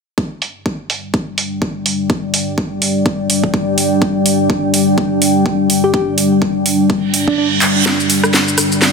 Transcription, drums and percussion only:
0.18 kick
0.42 open hi-hat
0.66 kick
0.90 open hi-hat
1.14 kick
1.38 open hi-hat
1.62 kick
1.86 open hi-hat
2.10 kick
2.34 open hi-hat
2.58 kick
2.82 open hi-hat
3.06 kick
3.30 open hi-hat
3.44 kick
3.54 kick
3.78 open hi-hat
4.02 kick
4.26 open hi-hat
4.50 kick
4.74 open hi-hat
4.98 kick
5.22 open hi-hat
5.46 kick
5.70 open hi-hat
5.94 kick
6.18 open hi-hat
6.42 kick
6.66 open hi-hat
6.90 kick
7.14 open hi-hat
7.28 kick
7.62 clap, open hi-hat
7.86 snare, shaker
8.00 shaker
8.10 open hi-hat, shaker
8.24 cross-stick, shaker
8.34 snare, shaker
8.48 shaker
8.58 cross-stick, open hi-hat, shaker
8.72 shaker
8.82 snare, shaker

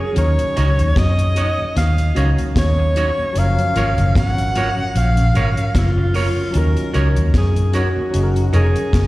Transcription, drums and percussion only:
0.16 closed hi-hat
0.39 closed hi-hat
0.57 closed hi-hat
0.79 closed hi-hat
0.96 kick, snare, closed hi-hat
1.19 closed hi-hat
1.36 closed hi-hat
1.76 snare, closed hi-hat
1.98 closed hi-hat
2.16 closed hi-hat
2.38 closed hi-hat
2.56 kick, snare, closed hi-hat
2.96 closed hi-hat
3.36 closed hi-hat
3.58 closed hi-hat
3.76 closed hi-hat
3.98 closed hi-hat
4.15 kick, snare, closed hi-hat
4.38 closed hi-hat
4.55 closed hi-hat
4.96 closed hi-hat
5.17 closed hi-hat
5.35 closed hi-hat
5.57 closed hi-hat
5.75 kick, snare, closed hi-hat
6.14 open hi-hat
6.54 closed hi-hat
6.77 closed hi-hat
6.94 closed hi-hat
7.16 closed hi-hat
7.34 kick, snare, closed hi-hat
7.56 closed hi-hat
7.73 closed hi-hat
8.14 closed hi-hat
8.36 closed hi-hat
8.54 closed hi-hat
8.76 closed hi-hat
8.93 kick, snare, closed hi-hat

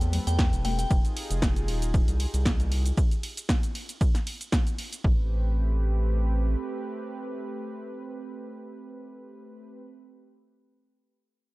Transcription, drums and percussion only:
0.01 closed hi-hat, shaker
0.13 open hi-hat, ride, high conga, low conga
0.27 closed hi-hat, shaker
0.39 kick, snare, ride, shaker
0.53 closed hi-hat, shaker
0.65 open hi-hat, ride, high conga
0.79 closed hi-hat, shaker
0.91 kick, ride, shaker
1.05 closed hi-hat, shaker
1.17 open hi-hat, ride
1.31 closed hi-hat, shaker
1.42 kick, snare, ride, shaker
1.56 closed hi-hat, shaker
1.68 open hi-hat, ride
1.82 closed hi-hat, shaker
1.94 kick, ride, shaker
2.08 closed hi-hat, shaker
2.20 open hi-hat, ride
2.34 closed hi-hat, shaker
2.46 kick, snare, ride, shaker
2.60 closed hi-hat, shaker
2.72 open hi-hat, ride
2.86 closed hi-hat, shaker
2.97 kick, ride, shaker
3.11 closed hi-hat, shaker
3.23 open hi-hat, ride
3.37 closed hi-hat, shaker
3.49 kick, snare, ride, shaker
3.63 closed hi-hat, shaker
3.75 open hi-hat, ride
3.89 closed hi-hat, shaker
4.01 kick, ride, shaker
4.15 snare, closed hi-hat, shaker
4.27 open hi-hat, ride
4.41 closed hi-hat, shaker
4.52 kick, snare, ride, shaker
4.67 closed hi-hat, shaker
4.79 open hi-hat, ride
4.93 closed hi-hat, shaker
5.04 kick

